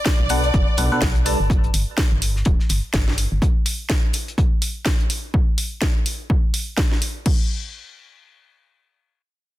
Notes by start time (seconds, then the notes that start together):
Already playing: D5
0.06 kick, snare, closed hi-hat
0.20 B1
0.29 B2 D4 A4 B4 F#5, closed hi-hat, open hi-hat
0.44 closed hi-hat
0.54 F#1, kick, closed hi-hat
0.77 B1 B2 D4 A4 B4 F#5, closed hi-hat, open hi-hat
0.92 B2 D4 A4 B4 F#5
1.01 B1, kick, snare, closed hi-hat
1.16 closed hi-hat
1.26 G3 D4 A4 B4 A5, closed hi-hat, open hi-hat
1.40 G1
1.50 kick, closed hi-hat
1.64 closed hi-hat
1.74 G1, closed hi-hat, open hi-hat
1.98 kick, snare, closed hi-hat
2.12 G1
2.22 closed hi-hat, open hi-hat
2.36 snare
2.45 D1, kick, closed hi-hat
2.60 snare
2.69 G1, snare, closed hi-hat, open hi-hat
2.94 G1, kick, snare, closed hi-hat
3.08 snare
3.18 closed hi-hat, open hi-hat
3.32 G1
3.42 kick, closed hi-hat
3.66 closed hi-hat, open hi-hat
3.90 kick, snare, closed hi-hat
4.13 closed hi-hat, open hi-hat
4.28 closed hi-hat
4.38 kick, closed hi-hat
4.62 closed hi-hat, open hi-hat
4.86 kick, snare, closed hi-hat
5.00 closed hi-hat
5.10 closed hi-hat, open hi-hat
5.34 kick
5.58 open hi-hat
5.82 kick, snare
6.06 open hi-hat
6.30 kick
6.54 open hi-hat
6.78 kick, snare
6.92 snare
7.02 open hi-hat
7.26 kick, crash